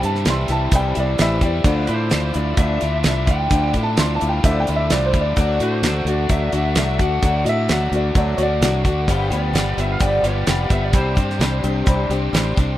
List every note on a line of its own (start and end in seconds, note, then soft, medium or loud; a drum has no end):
0.00 0.25 G2 medium
0.00 0.24 C3 medium
0.00 0.26 E3 medium
0.00 0.27 C4 medium
0.00 1.62 E4 medium
0.00 0.26 E4 soft
0.00 0.26 G4 medium
0.00 1.62 C5 medium
0.00 1.63 A5 medium
0.00 closed hi-hat medium
0.05 0.25 G3 soft
0.05 0.26 A5 medium
0.15 snare soft
0.25 0.47 C2 medium
0.25 1.18 C3 loud
0.25 0.49 E3 medium
0.25 0.49 G3 medium
0.25 0.94 C4 loud
0.25 0.49 E4 medium
0.25 0.47 G4 medium
0.25 snare loud
0.25 closed hi-hat loud
0.30 0.51 C6 medium
0.48 0.71 C2 medium
0.48 0.72 G3 soft
0.48 0.72 E4 medium
0.48 0.72 G4 medium
0.48 0.73 A5 medium
0.48 snare soft
0.48 closed hi-hat medium
0.72 0.94 C2 loud
0.72 0.95 C3 medium
0.72 0.96 E3 medium
0.72 0.96 G3 medium
0.72 0.95 E4 medium
0.72 0.94 G4 medium
0.72 kick loud
0.72 closed hi-hat loud
0.76 0.96 G5 medium
0.95 1.18 C2 medium
0.95 1.18 G3 medium
0.95 1.19 C4 medium
0.95 1.19 E4 medium
0.95 1.18 G4 medium
0.95 closed hi-hat medium
1.00 1.20 D5 medium
1.18 1.40 A1 loud
1.18 1.42 E3 medium
1.18 1.42 G3 medium
1.18 1.42 C4 medium
1.18 1.42 E4 medium
1.18 1.41 G4 medium
1.18 1.43 E5 medium
1.18 snare loud
1.18 closed hi-hat loud
1.41 1.63 E2 medium
1.41 1.65 G3 medium
1.41 1.65 C4 medium
1.41 1.65 E4 medium
1.41 1.65 G4 medium
1.41 1.77 D5 medium
1.41 kick medium
1.41 closed hi-hat medium
1.64 1.86 D2 loud
1.64 1.88 D3 medium
1.64 1.88 F3 loud
1.64 1.88 A3 medium
1.64 1.87 D4 medium
1.64 1.87 E4 medium
1.64 5.33 F4 medium
1.64 1.87 F4 loud
1.64 5.33 E5 medium
1.64 9.04 D6 medium
1.64 kick loud
1.64 closed hi-hat medium
1.87 2.10 A2 medium
1.87 2.09 A3 soft
1.87 2.10 D4 medium
1.87 2.11 E4 medium
1.87 2.13 F4 medium
1.87 2.32 C5 medium
1.87 closed hi-hat medium
2.10 2.34 D2 medium
2.10 3.03 D3 medium
2.10 2.34 F3 medium
2.10 2.34 A3 medium
2.10 2.33 D4 medium
2.10 2.32 E4 medium
2.10 2.79 F4 loud
2.10 snare loud
2.10 closed hi-hat loud
2.33 2.57 D2 medium
2.33 2.57 A3 soft
2.33 2.57 D4 soft
2.33 2.57 E4 medium
2.33 2.59 D5 medium
2.33 closed hi-hat medium
2.57 2.79 D2 loud
2.57 2.81 D3 medium
2.57 2.81 F3 medium
2.57 2.81 A3 medium
2.57 2.81 D4 medium
2.57 2.80 E4 medium
2.57 3.02 E5 loud
2.57 kick loud
2.57 closed hi-hat medium
2.80 3.03 D2 medium
2.80 3.04 A3 soft
2.80 3.04 D4 medium
2.80 3.04 E4 medium
2.80 3.05 F4 medium
2.80 closed hi-hat medium
3.03 3.27 C2 medium
3.03 3.50 D3 medium
3.03 3.27 F3 medium
3.03 3.28 A3 medium
3.03 3.28 D4 medium
3.03 3.26 E4 medium
3.03 3.25 F4 medium
3.03 snare loud
3.03 closed hi-hat medium
3.08 3.30 E5 medium
3.26 3.49 D2 medium
3.26 3.50 A3 soft
3.26 3.50 D4 soft
3.26 3.51 E4 soft
3.26 3.52 F4 medium
3.26 3.71 G5 loud
3.26 kick medium
3.26 closed hi-hat medium
3.50 3.73 D2 loud
3.50 3.73 D3 medium
3.50 3.74 F3 medium
3.50 3.74 A3 medium
3.50 3.74 D4 medium
3.50 3.73 E4 medium
3.50 3.72 F4 loud
3.50 kick loud
3.50 closed hi-hat medium
3.73 3.96 A2 medium
3.73 3.96 A3 soft
3.73 3.97 D4 soft
3.73 3.97 E4 soft
3.73 3.99 F4 medium
3.73 kick medium
3.73 closed hi-hat medium
3.83 3.97 A5 medium
3.97 4.19 D2 medium
3.97 4.90 D3 medium
3.97 4.20 F3 medium
3.97 4.20 A3 medium
3.97 4.20 D4 medium
3.97 4.19 E4 medium
3.97 4.13 C6 medium
3.97 snare loud
3.97 closed hi-hat loud
4.01 4.65 F4 loud
4.15 4.29 A5 medium
4.20 4.43 D2 medium
4.20 4.44 A3 soft
4.20 4.44 D4 medium
4.20 4.44 E4 medium
4.20 closed hi-hat medium
4.29 4.44 G5 medium
4.44 4.65 D2 loud
4.44 4.67 D3 medium
4.44 4.67 F3 medium
4.44 4.67 A3 loud
4.44 4.67 D4 loud
4.44 4.67 E4 medium
4.44 4.59 E5 medium
4.44 kick loud
4.44 closed hi-hat medium
4.60 4.75 G5 medium
4.66 4.89 D2 medium
4.66 4.90 A3 medium
4.66 4.91 D4 medium
4.66 4.90 E4 medium
4.66 4.93 F4 medium
4.66 closed hi-hat medium
4.76 4.90 E5 medium
4.90 5.13 C2 loud
4.90 5.36 D3 medium
4.90 5.14 F3 medium
4.90 5.14 A3 medium
4.90 5.14 D4 medium
4.90 5.13 E4 medium
4.90 5.06 D5 medium
4.90 snare loud
4.90 closed hi-hat medium
4.95 5.12 F4 medium
5.06 5.21 C5 medium
5.13 5.35 D2 medium
5.13 5.35 A3 medium
5.13 5.36 D4 medium
5.13 5.37 E4 medium
5.13 5.35 F4 medium
5.13 kick medium
5.13 closed hi-hat medium
5.21 5.47 D5 medium
5.36 5.58 D2 medium
5.36 5.59 D3 medium
5.36 5.59 F#3 medium
5.36 5.60 A3 medium
5.36 5.60 D4 medium
5.36 5.58 F#4 medium
5.36 9.05 A4 medium
5.36 9.05 F#5 medium
5.36 kick medium
5.36 closed hi-hat loud
5.60 5.82 A2 medium
5.60 5.83 A3 soft
5.60 5.83 D4 medium
5.60 5.83 F#4 medium
5.60 closed hi-hat medium
5.64 6.09 C5 medium
5.82 6.04 D2 medium
5.82 6.76 D3 loud
5.82 6.06 F#3 medium
5.82 6.07 A3 medium
5.82 6.06 D4 medium
5.82 6.05 F#4 medium
5.82 snare loud
5.82 closed hi-hat loud
6.05 6.27 D2 medium
6.05 6.28 A3 soft
6.05 6.29 D4 soft
6.05 6.29 F#4 medium
6.05 6.30 D5 medium
6.05 closed hi-hat medium
6.29 6.51 D2 medium
6.29 6.52 D3 medium
6.29 6.52 F#3 medium
6.29 6.52 A3 medium
6.29 6.53 D4 medium
6.29 6.51 F#4 medium
6.29 6.75 E5 loud
6.29 kick loud
6.29 closed hi-hat medium
6.52 6.74 D2 medium
6.52 6.76 A3 soft
6.52 6.76 D4 medium
6.52 6.76 F#4 medium
6.52 closed hi-hat medium
6.75 6.97 C2 medium
6.75 7.21 D3 medium
6.75 6.99 F#3 medium
6.75 7.00 A3 medium
6.75 6.99 D4 medium
6.75 6.97 F#4 medium
6.75 7.00 E5 loud
6.75 snare loud
6.75 closed hi-hat loud
6.99 7.21 D2 medium
6.99 7.22 A3 soft
6.99 7.23 D4 soft
6.99 7.22 F#4 medium
6.99 7.43 F#5 medium
6.99 kick medium
6.99 closed hi-hat medium
7.22 7.44 D2 medium
7.22 7.45 D3 medium
7.22 7.45 F#3 medium
7.22 7.46 A3 medium
7.22 7.44 D4 medium
7.22 7.43 F#4 medium
7.22 kick loud
7.22 closed hi-hat medium
7.44 7.67 A2 medium
7.44 7.68 A3 soft
7.44 7.69 D4 soft
7.44 7.68 F#4 soft
7.44 7.47 D#5 medium
7.44 closed hi-hat medium
7.49 7.92 E5 loud
7.68 7.91 D2 medium
7.68 8.60 D3 medium
7.68 7.92 F#3 medium
7.68 7.92 A3 medium
7.68 7.92 D4 medium
7.68 7.92 F#4 medium
7.68 snare loud
7.68 closed hi-hat medium
7.92 8.13 D2 loud
7.92 8.15 A3 medium
7.92 8.15 D4 medium
7.92 8.15 F#4 medium
7.92 closed hi-hat medium
7.96 8.16 D5 medium
8.15 8.37 D2 loud
8.15 8.38 D3 medium
8.15 8.39 F#3 medium
8.15 8.39 A3 medium
8.15 8.38 D4 medium
8.15 8.37 F#4 medium
8.15 8.39 D5 medium
8.15 kick loud
8.15 closed hi-hat medium
8.37 8.60 D2 medium
8.37 8.61 A3 soft
8.37 8.62 D4 medium
8.37 8.61 F#4 medium
8.37 8.40 C#5 medium
8.37 closed hi-hat medium
8.42 9.19 D5 medium
8.61 8.83 C2 loud
8.61 9.06 D3 medium
8.61 8.85 F#3 medium
8.61 8.85 A3 medium
8.61 8.85 D4 medium
8.61 8.84 F#4 medium
8.61 snare loud
8.61 closed hi-hat loud
8.85 9.07 D2 medium
8.85 9.09 A3 medium
8.85 9.08 D4 medium
8.85 9.08 F#4 medium
8.85 kick medium
8.85 closed hi-hat medium
9.08 9.30 G1 loud
9.08 9.31 G2 medium
9.08 9.31 D3 medium
9.08 9.31 F3 medium
9.08 9.30 G3 medium
9.08 9.30 B3 loud
9.08 12.77 G4 medium
9.08 9.29 G4 loud
9.08 10.92 F5 medium
9.08 10.92 B5 medium
9.08 kick medium
9.08 closed hi-hat medium
9.30 9.53 D2 medium
9.30 9.52 F3 soft
9.30 9.52 G3 medium
9.30 9.54 B3 medium
9.30 9.54 G4 medium
9.30 9.79 D5 medium
9.30 closed hi-hat medium
9.53 9.75 G1 medium
9.53 10.47 G2 loud
9.53 10.47 D3 loud
9.53 9.77 F3 medium
9.53 9.77 G3 medium
9.53 9.77 B3 medium
9.53 9.77 G4 medium
9.53 snare loud
9.53 closed hi-hat loud
9.77 9.99 G1 medium
9.77 9.99 F3 soft
9.77 9.99 G3 medium
9.77 10.00 B3 medium
9.77 10.00 G4 medium
9.77 9.92 E5 loud
9.77 closed hi-hat medium
9.92 10.02 F5 loud
9.99 10.22 G1 medium
9.99 10.23 G2 medium
9.99 10.24 D3 medium
9.99 10.24 F3 medium
9.99 10.24 G3 medium
9.99 10.24 B3 medium
9.99 10.22 G4 loud
9.99 10.24 D5 loud
9.99 kick loud
9.99 closed hi-hat medium
10.23 10.45 G1 medium
10.23 10.45 F3 soft
10.23 10.46 G3 medium
10.23 10.47 B3 soft
10.23 10.47 G4 medium
10.23 10.71 D5 loud
10.23 closed hi-hat medium
10.46 10.69 F1 loud
10.46 10.70 F3 medium
10.46 10.70 G3 medium
10.46 10.70 B3 medium
10.46 10.69 G4 medium
10.46 snare loud
10.46 closed hi-hat loud
10.70 10.95 G1 medium
10.70 10.93 F3 soft
10.70 10.92 G3 soft
10.70 10.94 B3 medium
10.70 10.93 G4 medium
10.70 10.85 E5 loud
10.70 kick medium
10.70 closed hi-hat medium
10.85 10.95 D5 medium
10.93 11.15 C2 loud
10.93 11.17 C3 medium
10.93 11.17 G3 medium
10.93 11.16 C4 medium
10.93 11.15 D4 medium
10.93 11.14 G4 medium
10.93 12.30 C5 medium
10.93 12.78 D5 medium
10.93 12.78 C6 medium
10.93 kick loud
10.93 closed hi-hat medium
11.16 11.39 G2 medium
11.16 11.39 C4 soft
11.16 11.40 D4 soft
11.16 11.40 G4 medium
11.16 kick medium
11.16 closed hi-hat medium
11.30 snare soft
11.38 11.62 C2 medium
11.38 12.32 C3 loud
11.38 11.63 G3 medium
11.38 11.64 C4 medium
11.38 11.63 D4 medium
11.38 11.62 G4 medium
11.38 snare loud
11.38 closed hi-hat medium
11.63 11.86 C2 loud
11.63 11.86 C4 soft
11.63 11.86 D4 medium
11.63 11.86 G4 medium
11.63 closed hi-hat medium
11.86 12.09 C2 loud
11.86 12.10 C3 medium
11.86 12.10 G3 medium
11.86 12.10 C4 loud
11.86 12.10 D4 medium
11.86 12.09 G4 loud
11.86 kick loud
11.86 closed hi-hat medium
12.10 12.32 C2 medium
12.10 12.33 C4 soft
12.10 12.33 D4 medium
12.10 12.34 G4 medium
12.10 closed hi-hat medium
12.33 12.55 A1 medium
12.33 12.57 G3 medium
12.33 12.57 C4 medium
12.33 12.56 D4 medium
12.33 12.55 G4 medium
12.33 snare loud
12.33 closed hi-hat medium
12.57 12.78 C2 medium
12.57 12.78 C4 soft
12.57 12.78 D4 medium
12.57 12.78 G4 medium
12.57 kick loud
12.57 closed hi-hat medium